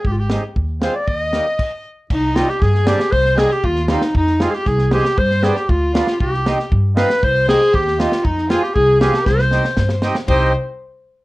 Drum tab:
CC |--------|----x---|x-------|--------|
RD |--------|--------|--------|--------|
SD |--o---o-|--o-----|--oooooo|-ooo-ooo|
FT |--------|--------|--------|--------|
BD |o---o---|o---o---|o---o---|o---o---|

CC |--------|--------|--------|--------|
RD |--------|--------|--------|--------|
SD |-ooooooo|-ooo--oo|-ooo--oo|--oo-ooo|
FT |--------|--------|--------|--------|
BD |o---o---|o---o---|o---o---|o---o---|

CC |--------|--------|--------|
RD |--------|--------|b-------|
SD |-ooo--oo|oooooooo|--------|
FT |--------|--------|o-------|
BD |o---o---|o---o---|o-------|